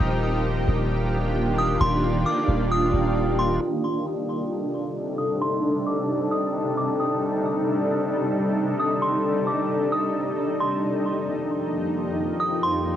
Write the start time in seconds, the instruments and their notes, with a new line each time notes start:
Already playing: ambient pad G4
0.00 808-style bass D#1, ambient pad D#3 A#3 D4 F4
0.68 808-style bass D#1
1.58 synth bell D#6
1.81 808-style bass D#1, synth bell C6
2.26 synth bell D6
2.48 808-style bass D#1
2.72 synth bell D#6
2.93 808-style bass D#1
3.39 synth bell C6
3.61 ambient pad C3 G3 D4 D#4 A4
5.18 synth bell D#6
5.42 synth bell C6
5.87 synth bell D6
6.31 synth bell D#6
6.77 synth bell D6
7.00 synth bell D#6
8.79 synth bell D#6
9.02 synth bell C6
9.47 synth bell D6
9.92 synth bell D#6
10.60 synth bell C6
10.83 ambient pad F2 F3 A#3 G4
12.40 synth bell D#6
12.63 synth bell C6